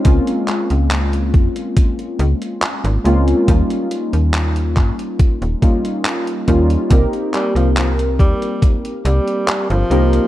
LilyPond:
<<
  \new Staff \with { instrumentName = "Synth keys" } { \time 4/4 \key bes \dorian \tempo 4 = 70 <aes bes c' des' f'>2.~ <aes bes c' des' f'>8 <aes bes c' des' f'>8 | <g bes des' ees' f'>2~ <g bes des' ees' f'>8 <g bes des' ees' f'>8 r8 <g bes des' ees' f'>8 | <bes c' ees' g' bes'>2.~ <bes c' ees' g' bes'>8 <bes c' ees' g' bes'>8 | }
  \new Staff \with { instrumentName = "Tenor saxophone" } { \clef bass \time 4/4 \key bes \dorian r1 | r1 | r8 g16 f16 f16 r16 g8 r8 g8. f8. | }
  \new Staff \with { instrumentName = "FM bass" } { \clef bass \time 4/4 \key bes \dorian des,16 r8 des,8. f,16 r8. des,16 r8 aes,,16 des,16 r16 | ees,16 r8 ees,8. g,16 r8 ees,,16 r4 ees,16 r16 | c,16 r8 c,8. ees,16 r8. c,16 r8 g,,16 c,16 r16 | }
  \new DrumStaff \with { instrumentName = "Drums" } \drummode { \time 4/4 <hh bd>16 hh16 <hc hh>16 hh16 <hc hh>16 hh16 <hh bd>16 hh16 <hh bd>16 hh16 hh16 hh16 <hc hh>16 hh16 hh16 hh16 | <hh bd>16 hh16 hh16 hh16 <hc hh>16 hh16 <hc hh bd>16 hh16 <hh bd>16 hh16 <hh bd>16 hh16 <hc hh>16 hh16 <hh bd>16 hh16 | <hh bd>16 hh16 <hc hh>16 hh16 <hc hh>16 hh16 <hh bd>16 hh16 <hh bd>16 hh16 hh16 hh16 <hc hh>16 hh16 hh16 hh16 | }
>>